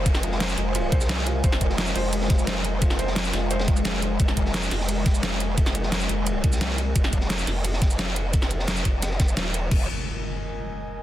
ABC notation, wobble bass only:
X:1
M:4/4
L:1/8
Q:1/4=174
K:Fm
V:1 name="Wobble bass" clef=bass
F,,,3 F,,,2 C,,3 | F,,,3 F,,,4- F,,,- | F,,,3 F,,,4- F,,, | F,,,3 F,,,4- F,,,- |
F,,,3 F,,,2 C,,3 | F,,,3 F,,,4- F,,,- | F,,,3 F,,,3 E,,,2 | F,,, z6 z |]